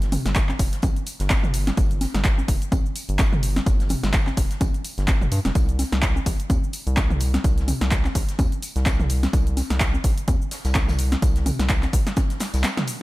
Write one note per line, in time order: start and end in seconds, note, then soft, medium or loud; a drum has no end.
0.00 0.17 G1 loud
0.00 snare soft
0.00 closed hi-hat soft
0.00 shaker soft
0.12 mid tom medium
0.12 open hi-hat loud
0.12 tambourine medium
0.12 high conga medium
0.12 shaker medium
0.25 0.53 G1 medium
0.25 snare medium
0.25 closed hi-hat medium
0.25 shaker soft
0.35 kick loud
0.35 snare loud
0.35 clap loud
0.35 closed hi-hat medium
0.35 tambourine medium
0.35 shaker soft
0.49 snare medium
0.49 clap soft
0.49 high conga soft
0.49 shaker soft
0.59 0.68 F1 loud
0.59 kick medium
0.59 open hi-hat loud
0.59 tambourine medium
0.59 shaker medium
0.72 snare medium
0.72 closed hi-hat medium
0.72 shaker soft
0.82 0.91 A#1 medium
0.82 kick loud
0.82 closed hi-hat medium
0.82 tambourine medium
0.82 high conga medium
0.82 shaker soft
0.96 closed hi-hat soft
0.96 shaker soft
1.06 open hi-hat loud
1.06 tambourine medium
1.06 shaker medium
1.19 1.71 G1 medium
1.19 snare medium
1.19 closed hi-hat medium
1.19 shaker soft
1.30 kick loud
1.30 snare loud
1.30 clap loud
1.30 closed hi-hat medium
1.30 tambourine medium
1.30 high conga soft
1.30 shaker soft
1.44 mid tom loud
1.44 shaker soft
1.54 open hi-hat loud
1.54 tambourine medium
1.54 shaker medium
1.67 snare medium
1.67 closed hi-hat medium
1.67 high conga medium
1.67 shaker soft
1.77 2.06 G1 medium
1.77 kick loud
1.77 closed hi-hat medium
1.77 tambourine medium
1.77 shaker soft
1.91 closed hi-hat soft
1.91 shaker soft
2.01 snare soft
2.01 open hi-hat loud
2.01 tambourine medium
2.01 high conga medium
2.01 shaker medium
2.14 2.42 G1 medium
2.14 snare medium
2.14 closed hi-hat medium
2.14 shaker soft
2.24 kick loud
2.24 snare loud
2.24 clap loud
2.24 closed hi-hat medium
2.24 tambourine medium
2.24 shaker soft
2.38 high conga soft
2.38 shaker soft
2.48 2.56 F1 medium
2.48 kick medium
2.48 open hi-hat loud
2.48 tambourine medium
2.48 shaker medium
2.62 closed hi-hat medium
2.62 shaker soft
2.72 2.80 A#1 medium
2.72 kick loud
2.72 closed hi-hat medium
2.72 tambourine medium
2.72 high conga medium
2.72 shaker soft
2.86 shaker soft
2.96 open hi-hat loud
2.96 tambourine medium
2.96 shaker medium
3.08 3.60 G1 medium
3.08 closed hi-hat soft
3.08 closed hi-hat medium
3.08 shaker soft
3.18 kick loud
3.18 snare loud
3.18 clap loud
3.18 closed hi-hat medium
3.18 tambourine medium
3.18 high conga soft
3.18 shaker soft
3.33 mid tom loud
3.33 shaker soft
3.43 open hi-hat loud
3.43 tambourine medium
3.43 shaker medium
3.56 snare medium
3.56 snare soft
3.56 closed hi-hat medium
3.56 high conga medium
3.56 shaker soft
3.66 3.95 G1 loud
3.66 kick loud
3.66 closed hi-hat medium
3.66 tambourine medium
3.66 shaker soft
3.80 snare soft
3.80 closed hi-hat soft
3.80 shaker soft
3.89 mid tom medium
3.89 open hi-hat loud
3.89 tambourine medium
3.89 high conga medium
3.89 shaker medium
4.03 4.31 G1 medium
4.03 snare medium
4.03 closed hi-hat medium
4.03 shaker soft
4.13 kick loud
4.13 snare loud
4.13 clap loud
4.13 closed hi-hat medium
4.13 tambourine medium
4.13 shaker soft
4.27 snare medium
4.27 clap soft
4.27 high conga soft
4.27 shaker soft
4.37 4.45 F1 loud
4.37 kick medium
4.37 open hi-hat loud
4.37 tambourine medium
4.37 shaker medium
4.50 snare soft
4.50 closed hi-hat medium
4.50 shaker soft
4.61 4.69 A#1 medium
4.61 kick loud
4.61 closed hi-hat medium
4.61 tambourine medium
4.61 high conga medium
4.61 shaker soft
4.74 closed hi-hat soft
4.74 shaker soft
4.85 open hi-hat loud
4.85 tambourine medium
4.85 shaker medium
4.98 5.21 G1 medium
4.98 snare medium
4.98 closed hi-hat soft
4.98 shaker soft
5.08 kick loud
5.08 snare loud
5.08 clap loud
5.08 closed hi-hat medium
5.08 tambourine medium
5.08 high conga soft
5.08 shaker soft
5.21 5.28 F1 medium
5.21 mid tom loud
5.21 shaker soft
5.31 5.40 G2 loud
5.31 open hi-hat loud
5.31 tambourine medium
5.31 shaker medium
5.45 5.51 F1 medium
5.45 snare medium
5.45 closed hi-hat medium
5.45 high conga medium
5.45 shaker soft
5.55 5.84 C2 loud
5.55 kick loud
5.55 closed hi-hat medium
5.55 tambourine loud
5.55 shaker soft
5.69 closed hi-hat soft
5.69 shaker soft
5.79 snare soft
5.79 open hi-hat loud
5.79 tambourine medium
5.79 high conga medium
5.79 shaker medium
5.92 6.20 C2 medium
5.92 snare medium
5.92 closed hi-hat soft
5.92 shaker soft
6.02 kick loud
6.02 snare loud
6.02 clap loud
6.02 closed hi-hat medium
6.02 tambourine medium
6.02 shaker soft
6.16 high conga soft
6.16 shaker soft
6.26 6.34 A#1 loud
6.26 kick medium
6.26 open hi-hat loud
6.26 tambourine medium
6.26 shaker medium
6.40 closed hi-hat medium
6.40 shaker soft
6.50 6.58 D#2 medium
6.50 kick loud
6.50 closed hi-hat medium
6.50 tambourine medium
6.50 high conga medium
6.50 shaker soft
6.64 shaker soft
6.73 open hi-hat loud
6.73 tambourine medium
6.73 shaker medium
6.87 7.38 C2 medium
6.87 closed hi-hat medium
6.87 closed hi-hat soft
6.87 shaker soft
6.97 kick loud
6.97 snare loud
6.97 clap loud
6.97 closed hi-hat medium
6.97 tambourine medium
6.97 high conga soft
6.97 shaker soft
7.10 mid tom loud
7.10 shaker soft
7.20 open hi-hat loud
7.20 tambourine medium
7.20 shaker medium
7.34 snare soft
7.34 snare medium
7.34 closed hi-hat medium
7.34 high conga medium
7.34 shaker soft
7.44 7.73 C2 loud
7.44 kick loud
7.44 closed hi-hat medium
7.44 tambourine medium
7.44 shaker soft
7.58 snare soft
7.58 closed hi-hat soft
7.58 shaker soft
7.68 mid tom medium
7.68 open hi-hat loud
7.68 tambourine medium
7.68 high conga medium
7.68 shaker medium
7.81 8.09 C2 medium
7.81 snare medium
7.81 closed hi-hat medium
7.81 shaker soft
7.91 kick loud
7.91 snare loud
7.91 clap loud
7.91 closed hi-hat medium
7.91 tambourine medium
7.91 shaker soft
8.05 snare medium
8.05 clap soft
8.05 high conga soft
8.05 shaker soft
8.15 8.23 A#1 medium
8.15 kick medium
8.15 open hi-hat loud
8.15 tambourine medium
8.15 shaker medium
8.29 snare medium
8.29 closed hi-hat medium
8.29 shaker soft
8.39 8.47 D#2 medium
8.39 kick loud
8.39 closed hi-hat medium
8.39 tambourine medium
8.39 high conga medium
8.39 shaker soft
8.52 closed hi-hat soft
8.52 shaker soft
8.62 open hi-hat loud
8.62 tambourine medium
8.62 shaker medium
8.76 9.27 C2 medium
8.76 snare medium
8.76 closed hi-hat medium
8.76 shaker soft
8.86 kick loud
8.86 snare loud
8.86 clap loud
8.86 closed hi-hat medium
8.86 tambourine medium
8.86 high conga soft
8.86 shaker soft
9.00 mid tom medium
9.00 shaker soft
9.09 open hi-hat loud
9.09 tambourine medium
9.09 shaker medium
9.23 snare medium
9.23 closed hi-hat medium
9.23 high conga medium
9.23 shaker soft
9.33 9.62 C2 loud
9.33 kick loud
9.33 closed hi-hat medium
9.33 tambourine loud
9.33 shaker soft
9.47 closed hi-hat soft
9.47 shaker soft
9.57 snare soft
9.57 open hi-hat loud
9.57 tambourine medium
9.57 high conga medium
9.57 shaker medium
9.70 9.98 C2 medium
9.70 snare medium
9.70 closed hi-hat medium
9.70 shaker soft
9.80 kick loud
9.80 snare loud
9.80 clap loud
9.80 closed hi-hat medium
9.80 tambourine medium
9.80 shaker soft
9.94 high conga soft
9.94 shaker soft
10.04 10.12 A#1 loud
10.04 kick medium
10.04 open hi-hat loud
10.04 tambourine medium
10.04 shaker medium
10.18 closed hi-hat medium
10.18 shaker soft
10.28 10.36 D#2 medium
10.28 kick loud
10.28 closed hi-hat medium
10.28 tambourine medium
10.28 high conga medium
10.28 shaker soft
10.42 shaker soft
10.51 snare loud
10.51 open hi-hat loud
10.51 tambourine medium
10.51 shaker medium
10.65 11.16 C2 medium
10.65 snare loud
10.65 closed hi-hat medium
10.65 tambourine medium
10.65 shaker soft
10.75 kick loud
10.75 snare loud
10.75 clap loud
10.75 closed hi-hat medium
10.75 tambourine medium
10.75 high conga soft
10.75 shaker soft
10.88 snare medium
10.88 mid tom medium
10.88 tambourine medium
10.88 shaker soft
10.98 open hi-hat loud
10.98 tambourine medium
10.98 shaker medium
11.12 snare soft
11.12 snare medium
11.12 closed hi-hat medium
11.12 high conga medium
11.12 shaker soft
11.22 11.51 C2 loud
11.22 kick loud
11.22 closed hi-hat medium
11.22 tambourine medium
11.22 shaker soft
11.35 snare soft
11.35 closed hi-hat soft
11.35 shaker soft
11.46 mid tom medium
11.46 open hi-hat loud
11.46 tambourine medium
11.46 high conga medium
11.46 shaker medium
11.59 11.87 C2 medium
11.59 snare medium
11.59 closed hi-hat medium
11.59 shaker soft
11.69 kick loud
11.69 snare loud
11.69 clap loud
11.69 closed hi-hat medium
11.69 tambourine medium
11.69 shaker soft
11.83 snare medium
11.83 clap soft
11.83 closed hi-hat soft
11.83 high conga soft
11.83 shaker soft
11.93 12.01 A#1 loud
11.93 kick medium
11.93 open hi-hat loud
11.93 tambourine medium
11.93 shaker medium
12.07 snare medium
12.07 closed hi-hat medium
12.07 shaker soft
12.16 kick loud
12.16 snare medium
12.16 closed hi-hat medium
12.16 tambourine medium
12.16 high conga medium
12.16 shaker soft
12.30 snare medium
12.30 closed hi-hat soft
12.30 shaker soft
12.40 snare medium
12.40 snare loud
12.40 open hi-hat loud
12.40 tambourine medium
12.40 shaker medium
12.53 12.64 C2 medium
12.53 snare loud
12.53 closed hi-hat medium
12.53 tambourine medium
12.53 shaker soft
12.64 snare loud
12.64 snare medium
12.64 clap loud
12.64 closed hi-hat medium
12.64 tambourine medium
12.64 high conga soft
12.64 shaker soft
12.77 snare medium
12.77 closed hi-hat soft
12.77 mid tom medium
12.77 shaker soft
12.87 open hi-hat loud
12.87 tambourine medium
12.87 shaker medium